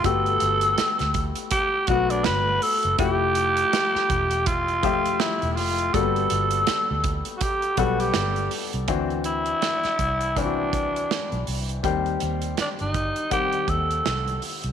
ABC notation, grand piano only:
X:1
M:4/4
L:1/16
Q:"Swing 16ths" 1/4=81
K:G
V:1 name="Grand piano"
[A,B,FG]6- [A,B,FG] z3 [F,A,B,F]6 | [=F,A,EG]6- [F,A,EG] z3 [F,A,Ge]6 | [G,_B,=B,FA]6- [G,_B,=B,FA] z3 [G,B,Af]6 | [E,CDF]6- [E,CDF] z [E,CDEF]6- [E,CDEF] z |
[_E,G,CG]6- [E,G,CG] z [E,G,Cf]6- [E,G,Cf] z |]